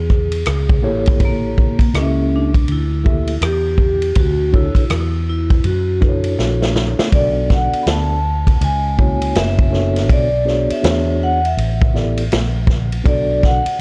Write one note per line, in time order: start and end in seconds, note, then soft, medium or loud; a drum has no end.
0.00 0.43 E2 medium
0.00 0.80 G#4 loud
0.10 kick medium
0.10 cross-stick soft
0.32 ride medium
0.46 0.83 C#2 medium
0.46 cross-stick loud
0.46 hi-hat pedal soft
0.46 ride medium
0.69 kick medium
0.82 1.77 A1 loud
0.82 1.75 A#3 medium
0.82 1.76 E4 medium
0.82 1.76 G4 medium
0.82 1.76 A4 medium
0.82 1.76 C#5 loud
1.06 kick loud
1.06 ride medium
1.20 kick loud
1.20 ride medium
1.25 1.93 A#3 medium
1.58 kick medium
1.79 kick medium
1.79 ride medium
1.94 2.65 C#2 medium
1.94 2.50 A#3 medium
1.94 2.50 E4 medium
1.94 2.50 G4 medium
1.94 2.51 A4 soft
1.94 2.03 D#5 medium
1.94 cross-stick medium
1.94 hi-hat pedal soft
1.94 ride medium
1.99 2.28 C#4 medium
1.99 2.54 E5 medium
2.29 2.33 C#4 medium
2.36 2.72 D4 medium
2.54 kick medium
2.54 ride medium
2.68 3.39 D2 medium
2.68 ride medium
2.72 3.47 E4 medium
3.04 3.33 A#3 medium
3.04 3.34 E4 medium
3.04 3.34 G4 medium
3.04 3.34 A4 medium
3.04 3.35 E5 medium
3.04 kick medium
3.27 ride medium
3.41 4.12 E2 medium
3.41 4.20 G4 loud
3.41 cross-stick loud
3.41 hi-hat pedal medium
3.41 ride medium
3.78 kick medium
4.02 ride medium
4.15 4.74 D2 loud
4.15 4.56 F#4 loud
4.15 kick medium
4.15 ride medium
4.52 4.82 D4 medium
4.52 4.82 E4 medium
4.52 5.28 E4 medium
4.52 4.82 F#4 medium
4.52 4.83 A4 medium
4.52 4.83 C#5 medium
4.52 kick medium
4.75 kick medium
4.75 ride medium
4.90 5.61 E2 medium
4.90 cross-stick loud
4.90 hi-hat pedal medium
4.90 ride medium
5.30 5.63 E4 medium
5.50 kick medium
5.50 ride soft
5.64 6.35 F#2 medium
5.64 6.35 F#4 medium
5.64 ride medium
6.01 7.07 D4 medium
6.01 7.07 E4 medium
6.01 7.07 F#4 medium
6.01 7.07 A4 medium
6.01 6.11 B4 medium
6.01 kick medium
6.01 cross-stick soft
6.09 7.11 C#5 medium
6.24 ride medium
6.39 6.96 A#1 medium
6.39 snare medium
6.62 snare medium
6.76 snare medium
6.99 snare medium
7.11 7.70 B1 loud
7.11 8.18 B3 medium
7.11 8.18 D4 medium
7.11 8.18 F#4 medium
7.11 8.19 A4 medium
7.11 8.19 D5 medium
7.11 7.48 D5 medium
7.11 kick medium
7.11 ride medium
7.50 7.85 F#5 medium
7.50 kick medium
7.50 snare soft
7.73 ride medium
7.83 8.57 D2 medium
7.83 7.88 B5 medium
7.83 hi-hat pedal soft
7.83 ride medium
7.88 8.58 A5 medium
7.88 snare loud
8.47 kick medium
8.47 ride medium
8.61 9.31 C#2 loud
8.61 9.39 G#5 loud
8.61 ride medium
8.97 10.03 A#3 medium
8.97 10.04 C#4 medium
8.97 10.04 E4 medium
8.97 9.70 F#4 medium
8.97 9.71 C#5 medium
8.97 kick medium
9.22 ride medium
9.35 10.09 F#1 loud
9.35 10.13 E5 medium
9.35 snare loud
9.35 hi-hat pedal medium
9.35 ride medium
9.59 kick medium
9.71 10.27 B3 medium
9.71 10.27 D4 medium
9.71 10.28 F#4 medium
9.71 10.28 A4 medium
9.71 10.28 C#5 medium
9.71 snare soft
9.96 snare soft
9.96 ride medium
10.09 10.66 B1 loud
10.09 10.67 D5 medium
10.09 kick medium
10.09 ride medium
10.45 10.81 B3 medium
10.45 10.81 D4 medium
10.45 10.82 F#4 medium
10.45 10.83 G#4 medium
10.45 10.83 C#5 medium
10.45 snare soft
10.70 11.18 E5 medium
10.70 muted fretless electric bass stroke soft
10.70 ride medium
10.82 11.54 E2 loud
10.82 11.38 B3 medium
10.82 11.39 D4 medium
10.82 11.39 F#4 medium
10.82 11.39 G#4 medium
10.82 11.39 C#5 medium
10.82 snare loud
10.82 hi-hat pedal soft
10.82 ride medium
11.23 11.46 F#5 loud
11.45 12.15 E5 medium
11.45 ride medium
11.57 12.28 A1 loud
11.57 ride medium
11.81 kick loud
11.94 12.23 B3 medium
11.94 12.23 E4 medium
11.94 12.23 G4 soft
11.94 12.24 A4 medium
11.94 12.24 D5 medium
11.94 snare soft
12.18 ride medium
12.32 13.02 A#1 medium
12.32 snare loud
12.32 hi-hat pedal medium
12.32 ride medium
12.67 kick medium
12.67 snare soft
12.92 ride medium
13.04 13.63 B1 loud
13.04 13.60 B3 medium
13.04 13.61 D4 medium
13.04 13.61 F#4 medium
13.04 13.61 A4 medium
13.04 13.61 D5 medium
13.04 kick loud
13.04 ride medium
13.08 13.41 D5 medium
13.43 13.81 F#5 medium
13.43 kick medium
13.43 snare soft
13.66 muted fretless electric bass stroke soft
13.66 ride medium